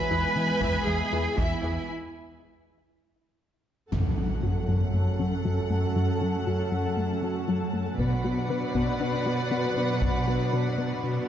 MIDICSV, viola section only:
0, 0, Header, 1, 2, 480
1, 0, Start_track
1, 0, Key_signature, 3, "minor"
1, 0, Tempo, 508475
1, 1778, Time_signature, 4, 2, 24, 8
1, 10650, End_track
2, 0, Start_track
2, 0, Title_t, "Viola section"
2, 0, Program_c, 0, 48
2, 103, Note_on_c, 0, 52, 47
2, 179, Note_off_c, 0, 52, 0
2, 582, Note_on_c, 0, 52, 61
2, 658, Note_off_c, 0, 52, 0
2, 822, Note_on_c, 0, 52, 44
2, 897, Note_off_c, 0, 52, 0
2, 1059, Note_on_c, 0, 52, 45
2, 1135, Note_off_c, 0, 52, 0
2, 1298, Note_on_c, 0, 52, 54
2, 1373, Note_off_c, 0, 52, 0
2, 1539, Note_on_c, 0, 52, 40
2, 1614, Note_off_c, 0, 52, 0
2, 3697, Note_on_c, 0, 69, 38
2, 7500, Note_off_c, 0, 69, 0
2, 7537, Note_on_c, 0, 71, 58
2, 10650, Note_off_c, 0, 71, 0
2, 10650, End_track
0, 0, End_of_file